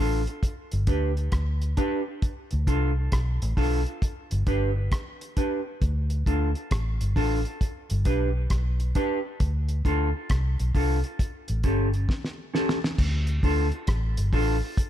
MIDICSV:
0, 0, Header, 1, 5, 480
1, 0, Start_track
1, 0, Tempo, 896861
1, 1191, Time_signature, 4, 2, 24, 8
1, 7972, End_track
2, 0, Start_track
2, 0, Title_t, "Clean electric guitar"
2, 0, Program_c, 0, 27
2, 0, Note_on_c, 0, 62, 78
2, 0, Note_on_c, 0, 65, 78
2, 0, Note_on_c, 0, 69, 79
2, 113, Note_off_c, 0, 62, 0
2, 115, Note_off_c, 0, 65, 0
2, 116, Note_off_c, 0, 69, 0
2, 469, Note_on_c, 0, 62, 75
2, 473, Note_on_c, 0, 67, 79
2, 474, Note_on_c, 0, 71, 77
2, 592, Note_off_c, 0, 62, 0
2, 594, Note_off_c, 0, 67, 0
2, 595, Note_off_c, 0, 71, 0
2, 948, Note_on_c, 0, 62, 89
2, 952, Note_on_c, 0, 67, 87
2, 955, Note_on_c, 0, 71, 95
2, 1072, Note_off_c, 0, 62, 0
2, 1074, Note_off_c, 0, 67, 0
2, 1075, Note_off_c, 0, 71, 0
2, 1431, Note_on_c, 0, 62, 70
2, 1434, Note_on_c, 0, 65, 76
2, 1438, Note_on_c, 0, 69, 80
2, 1554, Note_off_c, 0, 62, 0
2, 1556, Note_off_c, 0, 65, 0
2, 1557, Note_off_c, 0, 69, 0
2, 1910, Note_on_c, 0, 62, 77
2, 1913, Note_on_c, 0, 65, 87
2, 1915, Note_on_c, 0, 69, 92
2, 2034, Note_off_c, 0, 62, 0
2, 2035, Note_off_c, 0, 65, 0
2, 2036, Note_off_c, 0, 69, 0
2, 2391, Note_on_c, 0, 62, 76
2, 2395, Note_on_c, 0, 67, 78
2, 2397, Note_on_c, 0, 71, 85
2, 2514, Note_off_c, 0, 62, 0
2, 2516, Note_off_c, 0, 67, 0
2, 2517, Note_off_c, 0, 71, 0
2, 2872, Note_on_c, 0, 62, 69
2, 2876, Note_on_c, 0, 67, 71
2, 2879, Note_on_c, 0, 71, 84
2, 2995, Note_off_c, 0, 62, 0
2, 2997, Note_off_c, 0, 67, 0
2, 2998, Note_off_c, 0, 71, 0
2, 3353, Note_on_c, 0, 62, 73
2, 3356, Note_on_c, 0, 65, 70
2, 3358, Note_on_c, 0, 69, 72
2, 3476, Note_off_c, 0, 62, 0
2, 3477, Note_off_c, 0, 65, 0
2, 3478, Note_off_c, 0, 69, 0
2, 3831, Note_on_c, 0, 62, 78
2, 3835, Note_on_c, 0, 65, 82
2, 3837, Note_on_c, 0, 69, 86
2, 3955, Note_off_c, 0, 62, 0
2, 3957, Note_off_c, 0, 65, 0
2, 3958, Note_off_c, 0, 69, 0
2, 4312, Note_on_c, 0, 62, 86
2, 4315, Note_on_c, 0, 67, 81
2, 4317, Note_on_c, 0, 71, 97
2, 4435, Note_off_c, 0, 62, 0
2, 4437, Note_off_c, 0, 67, 0
2, 4438, Note_off_c, 0, 71, 0
2, 4792, Note_on_c, 0, 62, 85
2, 4796, Note_on_c, 0, 67, 89
2, 4798, Note_on_c, 0, 71, 95
2, 4915, Note_off_c, 0, 62, 0
2, 4917, Note_off_c, 0, 67, 0
2, 4918, Note_off_c, 0, 71, 0
2, 5271, Note_on_c, 0, 62, 75
2, 5274, Note_on_c, 0, 65, 82
2, 5278, Note_on_c, 0, 69, 85
2, 5395, Note_off_c, 0, 62, 0
2, 5396, Note_off_c, 0, 65, 0
2, 5398, Note_off_c, 0, 69, 0
2, 5751, Note_on_c, 0, 62, 76
2, 5754, Note_on_c, 0, 65, 83
2, 5758, Note_on_c, 0, 69, 88
2, 5874, Note_off_c, 0, 62, 0
2, 5876, Note_off_c, 0, 65, 0
2, 5878, Note_off_c, 0, 69, 0
2, 6230, Note_on_c, 0, 61, 80
2, 6234, Note_on_c, 0, 67, 81
2, 6237, Note_on_c, 0, 69, 84
2, 6353, Note_off_c, 0, 61, 0
2, 6355, Note_off_c, 0, 67, 0
2, 6357, Note_off_c, 0, 69, 0
2, 6709, Note_on_c, 0, 61, 78
2, 6713, Note_on_c, 0, 67, 78
2, 6717, Note_on_c, 0, 69, 87
2, 6833, Note_off_c, 0, 61, 0
2, 6835, Note_off_c, 0, 67, 0
2, 6837, Note_off_c, 0, 69, 0
2, 7190, Note_on_c, 0, 62, 72
2, 7194, Note_on_c, 0, 65, 74
2, 7197, Note_on_c, 0, 69, 90
2, 7313, Note_off_c, 0, 62, 0
2, 7315, Note_off_c, 0, 65, 0
2, 7316, Note_off_c, 0, 69, 0
2, 7668, Note_on_c, 0, 62, 72
2, 7671, Note_on_c, 0, 65, 82
2, 7673, Note_on_c, 0, 69, 83
2, 7791, Note_off_c, 0, 62, 0
2, 7793, Note_off_c, 0, 65, 0
2, 7794, Note_off_c, 0, 69, 0
2, 7972, End_track
3, 0, Start_track
3, 0, Title_t, "Fingered electric bass"
3, 0, Program_c, 1, 33
3, 0, Note_on_c, 1, 33, 89
3, 130, Note_off_c, 1, 33, 0
3, 392, Note_on_c, 1, 31, 88
3, 466, Note_off_c, 1, 31, 0
3, 471, Note_on_c, 1, 38, 79
3, 689, Note_off_c, 1, 38, 0
3, 712, Note_on_c, 1, 38, 86
3, 930, Note_off_c, 1, 38, 0
3, 1352, Note_on_c, 1, 38, 97
3, 1427, Note_off_c, 1, 38, 0
3, 1433, Note_on_c, 1, 36, 74
3, 1651, Note_off_c, 1, 36, 0
3, 1675, Note_on_c, 1, 35, 86
3, 1813, Note_off_c, 1, 35, 0
3, 1832, Note_on_c, 1, 33, 89
3, 1907, Note_off_c, 1, 33, 0
3, 1914, Note_on_c, 1, 35, 83
3, 2053, Note_off_c, 1, 35, 0
3, 2313, Note_on_c, 1, 31, 99
3, 2387, Note_off_c, 1, 31, 0
3, 2394, Note_on_c, 1, 31, 81
3, 2612, Note_off_c, 1, 31, 0
3, 3117, Note_on_c, 1, 38, 105
3, 3333, Note_off_c, 1, 38, 0
3, 3356, Note_on_c, 1, 38, 93
3, 3494, Note_off_c, 1, 38, 0
3, 3597, Note_on_c, 1, 33, 94
3, 3735, Note_off_c, 1, 33, 0
3, 3752, Note_on_c, 1, 31, 84
3, 3828, Note_off_c, 1, 31, 0
3, 3836, Note_on_c, 1, 33, 90
3, 3974, Note_off_c, 1, 33, 0
3, 4234, Note_on_c, 1, 31, 99
3, 4308, Note_off_c, 1, 31, 0
3, 4314, Note_on_c, 1, 35, 77
3, 4532, Note_off_c, 1, 35, 0
3, 4555, Note_on_c, 1, 35, 86
3, 4772, Note_off_c, 1, 35, 0
3, 5036, Note_on_c, 1, 38, 96
3, 5253, Note_off_c, 1, 38, 0
3, 5274, Note_on_c, 1, 38, 95
3, 5413, Note_off_c, 1, 38, 0
3, 5516, Note_on_c, 1, 36, 88
3, 5654, Note_off_c, 1, 36, 0
3, 5673, Note_on_c, 1, 35, 79
3, 5748, Note_off_c, 1, 35, 0
3, 5755, Note_on_c, 1, 36, 82
3, 5893, Note_off_c, 1, 36, 0
3, 6152, Note_on_c, 1, 33, 90
3, 6227, Note_off_c, 1, 33, 0
3, 6233, Note_on_c, 1, 31, 84
3, 6450, Note_off_c, 1, 31, 0
3, 6953, Note_on_c, 1, 38, 109
3, 7170, Note_off_c, 1, 38, 0
3, 7191, Note_on_c, 1, 38, 90
3, 7331, Note_off_c, 1, 38, 0
3, 7432, Note_on_c, 1, 33, 94
3, 7570, Note_off_c, 1, 33, 0
3, 7589, Note_on_c, 1, 31, 90
3, 7664, Note_off_c, 1, 31, 0
3, 7670, Note_on_c, 1, 33, 96
3, 7810, Note_off_c, 1, 33, 0
3, 7972, End_track
4, 0, Start_track
4, 0, Title_t, "Muted clean electric guitar strokes"
4, 2549, Note_on_c, 9, 29, 43
4, 2602, Note_off_c, 9, 29, 0
4, 7972, End_track
5, 0, Start_track
5, 0, Title_t, "Drums"
5, 145, Note_on_c, 9, 42, 33
5, 199, Note_off_c, 9, 42, 0
5, 229, Note_on_c, 9, 36, 99
5, 231, Note_on_c, 9, 42, 81
5, 282, Note_off_c, 9, 36, 0
5, 284, Note_off_c, 9, 42, 0
5, 383, Note_on_c, 9, 42, 50
5, 436, Note_off_c, 9, 42, 0
5, 465, Note_on_c, 9, 42, 66
5, 467, Note_on_c, 9, 36, 95
5, 519, Note_off_c, 9, 42, 0
5, 521, Note_off_c, 9, 36, 0
5, 626, Note_on_c, 9, 42, 33
5, 680, Note_off_c, 9, 42, 0
5, 706, Note_on_c, 9, 42, 78
5, 708, Note_on_c, 9, 36, 100
5, 711, Note_on_c, 9, 37, 96
5, 759, Note_off_c, 9, 42, 0
5, 762, Note_off_c, 9, 36, 0
5, 764, Note_off_c, 9, 37, 0
5, 865, Note_on_c, 9, 42, 45
5, 918, Note_off_c, 9, 42, 0
5, 948, Note_on_c, 9, 42, 68
5, 950, Note_on_c, 9, 36, 81
5, 1002, Note_off_c, 9, 42, 0
5, 1003, Note_off_c, 9, 36, 0
5, 1190, Note_on_c, 9, 36, 109
5, 1190, Note_on_c, 9, 42, 75
5, 1243, Note_off_c, 9, 42, 0
5, 1244, Note_off_c, 9, 36, 0
5, 1341, Note_on_c, 9, 42, 43
5, 1395, Note_off_c, 9, 42, 0
5, 1430, Note_on_c, 9, 36, 85
5, 1431, Note_on_c, 9, 42, 65
5, 1483, Note_off_c, 9, 36, 0
5, 1485, Note_off_c, 9, 42, 0
5, 1670, Note_on_c, 9, 42, 84
5, 1671, Note_on_c, 9, 36, 104
5, 1676, Note_on_c, 9, 37, 111
5, 1723, Note_off_c, 9, 42, 0
5, 1725, Note_off_c, 9, 36, 0
5, 1729, Note_off_c, 9, 37, 0
5, 1830, Note_on_c, 9, 42, 54
5, 1884, Note_off_c, 9, 42, 0
5, 1911, Note_on_c, 9, 36, 88
5, 1913, Note_on_c, 9, 46, 72
5, 1964, Note_off_c, 9, 36, 0
5, 1967, Note_off_c, 9, 46, 0
5, 2068, Note_on_c, 9, 42, 32
5, 2122, Note_off_c, 9, 42, 0
5, 2152, Note_on_c, 9, 36, 103
5, 2154, Note_on_c, 9, 42, 86
5, 2205, Note_off_c, 9, 36, 0
5, 2207, Note_off_c, 9, 42, 0
5, 2306, Note_on_c, 9, 42, 51
5, 2360, Note_off_c, 9, 42, 0
5, 2390, Note_on_c, 9, 42, 63
5, 2391, Note_on_c, 9, 36, 90
5, 2444, Note_off_c, 9, 36, 0
5, 2444, Note_off_c, 9, 42, 0
5, 2631, Note_on_c, 9, 36, 107
5, 2631, Note_on_c, 9, 42, 83
5, 2636, Note_on_c, 9, 37, 100
5, 2685, Note_off_c, 9, 36, 0
5, 2685, Note_off_c, 9, 42, 0
5, 2689, Note_off_c, 9, 37, 0
5, 2790, Note_on_c, 9, 42, 43
5, 2844, Note_off_c, 9, 42, 0
5, 2872, Note_on_c, 9, 42, 67
5, 2873, Note_on_c, 9, 36, 83
5, 2926, Note_off_c, 9, 42, 0
5, 2927, Note_off_c, 9, 36, 0
5, 3113, Note_on_c, 9, 36, 100
5, 3113, Note_on_c, 9, 42, 73
5, 3166, Note_off_c, 9, 36, 0
5, 3166, Note_off_c, 9, 42, 0
5, 3265, Note_on_c, 9, 42, 46
5, 3318, Note_off_c, 9, 42, 0
5, 3352, Note_on_c, 9, 36, 85
5, 3356, Note_on_c, 9, 42, 62
5, 3406, Note_off_c, 9, 36, 0
5, 3410, Note_off_c, 9, 42, 0
5, 3507, Note_on_c, 9, 42, 35
5, 3561, Note_off_c, 9, 42, 0
5, 3591, Note_on_c, 9, 42, 81
5, 3593, Note_on_c, 9, 36, 104
5, 3597, Note_on_c, 9, 37, 105
5, 3644, Note_off_c, 9, 42, 0
5, 3647, Note_off_c, 9, 36, 0
5, 3651, Note_off_c, 9, 37, 0
5, 3750, Note_on_c, 9, 42, 52
5, 3804, Note_off_c, 9, 42, 0
5, 3832, Note_on_c, 9, 36, 81
5, 3835, Note_on_c, 9, 46, 74
5, 3886, Note_off_c, 9, 36, 0
5, 3889, Note_off_c, 9, 46, 0
5, 3988, Note_on_c, 9, 42, 34
5, 4041, Note_off_c, 9, 42, 0
5, 4072, Note_on_c, 9, 36, 99
5, 4074, Note_on_c, 9, 42, 80
5, 4126, Note_off_c, 9, 36, 0
5, 4128, Note_off_c, 9, 42, 0
5, 4227, Note_on_c, 9, 42, 54
5, 4280, Note_off_c, 9, 42, 0
5, 4309, Note_on_c, 9, 42, 65
5, 4311, Note_on_c, 9, 36, 90
5, 4363, Note_off_c, 9, 42, 0
5, 4365, Note_off_c, 9, 36, 0
5, 4549, Note_on_c, 9, 42, 86
5, 4551, Note_on_c, 9, 36, 103
5, 4554, Note_on_c, 9, 37, 98
5, 4603, Note_off_c, 9, 42, 0
5, 4605, Note_off_c, 9, 36, 0
5, 4608, Note_off_c, 9, 37, 0
5, 4708, Note_on_c, 9, 42, 45
5, 4762, Note_off_c, 9, 42, 0
5, 4791, Note_on_c, 9, 42, 66
5, 4792, Note_on_c, 9, 36, 80
5, 4844, Note_off_c, 9, 42, 0
5, 4846, Note_off_c, 9, 36, 0
5, 5031, Note_on_c, 9, 42, 72
5, 5032, Note_on_c, 9, 36, 108
5, 5085, Note_off_c, 9, 42, 0
5, 5086, Note_off_c, 9, 36, 0
5, 5184, Note_on_c, 9, 42, 44
5, 5237, Note_off_c, 9, 42, 0
5, 5271, Note_on_c, 9, 36, 84
5, 5274, Note_on_c, 9, 42, 61
5, 5325, Note_off_c, 9, 36, 0
5, 5327, Note_off_c, 9, 42, 0
5, 5511, Note_on_c, 9, 42, 82
5, 5512, Note_on_c, 9, 36, 107
5, 5517, Note_on_c, 9, 37, 103
5, 5564, Note_off_c, 9, 42, 0
5, 5566, Note_off_c, 9, 36, 0
5, 5570, Note_off_c, 9, 37, 0
5, 5670, Note_on_c, 9, 42, 52
5, 5724, Note_off_c, 9, 42, 0
5, 5751, Note_on_c, 9, 36, 84
5, 5753, Note_on_c, 9, 46, 70
5, 5805, Note_off_c, 9, 36, 0
5, 5806, Note_off_c, 9, 46, 0
5, 5907, Note_on_c, 9, 42, 36
5, 5960, Note_off_c, 9, 42, 0
5, 5991, Note_on_c, 9, 36, 105
5, 5993, Note_on_c, 9, 42, 85
5, 6044, Note_off_c, 9, 36, 0
5, 6046, Note_off_c, 9, 42, 0
5, 6144, Note_on_c, 9, 42, 51
5, 6198, Note_off_c, 9, 42, 0
5, 6228, Note_on_c, 9, 42, 66
5, 6229, Note_on_c, 9, 36, 94
5, 6281, Note_off_c, 9, 42, 0
5, 6283, Note_off_c, 9, 36, 0
5, 6388, Note_on_c, 9, 42, 32
5, 6442, Note_off_c, 9, 42, 0
5, 6469, Note_on_c, 9, 36, 100
5, 6475, Note_on_c, 9, 38, 52
5, 6523, Note_off_c, 9, 36, 0
5, 6528, Note_off_c, 9, 38, 0
5, 6554, Note_on_c, 9, 38, 53
5, 6607, Note_off_c, 9, 38, 0
5, 6715, Note_on_c, 9, 38, 64
5, 6768, Note_off_c, 9, 38, 0
5, 6793, Note_on_c, 9, 38, 88
5, 6847, Note_off_c, 9, 38, 0
5, 6874, Note_on_c, 9, 38, 81
5, 6927, Note_off_c, 9, 38, 0
5, 6949, Note_on_c, 9, 36, 109
5, 6950, Note_on_c, 9, 49, 95
5, 7003, Note_off_c, 9, 36, 0
5, 7004, Note_off_c, 9, 49, 0
5, 7102, Note_on_c, 9, 42, 43
5, 7156, Note_off_c, 9, 42, 0
5, 7188, Note_on_c, 9, 36, 88
5, 7190, Note_on_c, 9, 46, 50
5, 7242, Note_off_c, 9, 36, 0
5, 7244, Note_off_c, 9, 46, 0
5, 7341, Note_on_c, 9, 42, 34
5, 7395, Note_off_c, 9, 42, 0
5, 7425, Note_on_c, 9, 42, 86
5, 7428, Note_on_c, 9, 36, 114
5, 7431, Note_on_c, 9, 37, 125
5, 7478, Note_off_c, 9, 42, 0
5, 7482, Note_off_c, 9, 36, 0
5, 7484, Note_off_c, 9, 37, 0
5, 7586, Note_on_c, 9, 42, 60
5, 7639, Note_off_c, 9, 42, 0
5, 7667, Note_on_c, 9, 36, 89
5, 7670, Note_on_c, 9, 46, 77
5, 7721, Note_off_c, 9, 36, 0
5, 7724, Note_off_c, 9, 46, 0
5, 7907, Note_on_c, 9, 36, 111
5, 7909, Note_on_c, 9, 42, 92
5, 7961, Note_off_c, 9, 36, 0
5, 7963, Note_off_c, 9, 42, 0
5, 7972, End_track
0, 0, End_of_file